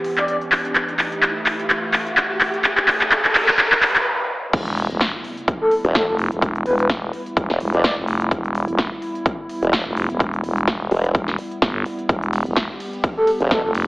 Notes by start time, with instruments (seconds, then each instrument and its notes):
Already playing: analog synth pad E3 B3 G4, riser
0.04 open hi-hat
0.18 soft synth lead D5, clap, closed hi-hat
0.28 soft synth lead D5, closed hi-hat
0.41 closed hi-hat
0.52 clap, open hi-hat
0.65 closed hi-hat
0.75 analog synth pad A3, clap, closed hi-hat
0.89 closed hi-hat
0.99 clap, open hi-hat
1.12 closed hi-hat
1.23 clap, closed hi-hat
1.46 clap, open hi-hat
1.59 closed hi-hat
1.70 clap, closed hi-hat
1.93 clap, open hi-hat
2.07 closed hi-hat
2.17 clap, closed hi-hat
2.41 clap, open hi-hat
2.54 closed hi-hat
2.64 clap, closed hi-hat, noise sweep
2.77 clap, closed hi-hat
2.88 clap, open hi-hat
3.01 clap, closed hi-hat
3.12 clap, closed hi-hat
3.25 clap, closed hi-hat
3.35 clap, open hi-hat
3.48 clap, closed hi-hat
3.59 clap, closed hi-hat
3.72 clap, closed hi-hat
3.82 clap, open hi-hat
3.96 clap, closed hi-hat
4.53 fm bass E1, analog synth pad G3 B3 E4, kick, closed hi-hat, crash, impact
4.67 closed hi-hat
4.77 open hi-hat
4.90 fm bass E1, closed hi-hat
5.01 kick, snare, closed hi-hat
5.24 open hi-hat
5.37 closed hi-hat
5.48 kick, closed hi-hat
5.61 soft synth lead A4
5.71 open hi-hat
5.84 wobble bass E1, closed hi-hat
5.95 soft synth lead A4, kick, snare, closed hi-hat
6.08 fm bass F1, soft synth lead A4
6.19 open hi-hat
6.32 fm bass E1, closed hi-hat
6.42 kick, closed hi-hat
6.55 closed hi-hat
6.66 fm bass E1, soft synth lead B4, open hi-hat
6.79 soft synth lead B4, closed hi-hat
6.90 kick, snare, closed hi-hat
7.13 open hi-hat
7.26 closed hi-hat
7.37 fm bass E1, kick, closed hi-hat
7.50 wobble bass E1, snare
7.60 fm bass E1, open hi-hat
7.73 wobble bass E1, soft synth lead D5, closed hi-hat
7.84 soft synth lead D5, kick, snare, closed hi-hat
7.97 fm bass F1
8.08 open hi-hat
8.21 closed hi-hat
8.31 fm bass E1, kick, closed hi-hat
8.44 closed hi-hat
8.55 open hi-hat
8.68 fm bass E1, closed hi-hat
8.78 kick, snare, closed hi-hat
9.02 open hi-hat
9.15 closed hi-hat
9.26 kick, closed hi-hat
9.49 open hi-hat
9.63 wobble bass E1, closed hi-hat
9.73 kick, snare, closed hi-hat
9.86 fm bass F1
9.97 open hi-hat
10.10 fm bass E1, closed hi-hat
10.20 kick, closed hi-hat
10.33 closed hi-hat
10.44 fm bass E1, open hi-hat
10.57 closed hi-hat
10.68 kick, snare, closed hi-hat
10.91 wobble bass E1, open hi-hat
11.04 closed hi-hat
11.15 fm bass E1, kick, closed hi-hat
11.28 snare
11.38 open hi-hat
11.51 closed hi-hat
11.62 fm bass G1, kick, snare, closed hi-hat
11.86 open hi-hat
11.99 closed hi-hat
12.09 fm bass E1, analog synth pad G4, kick, closed hi-hat
12.22 closed hi-hat
12.33 open hi-hat, ride
12.46 fm bass E1, closed hi-hat
12.56 kick, snare, closed hi-hat
12.80 open hi-hat, ride
12.93 closed hi-hat
13.04 kick, closed hi-hat
13.17 soft synth lead A4
13.27 open hi-hat, ride
13.40 wobble bass E1, closed hi-hat
13.51 soft synth lead A4, kick, snare, closed hi-hat
13.64 fm bass F1, soft synth lead A4
13.75 open hi-hat, ride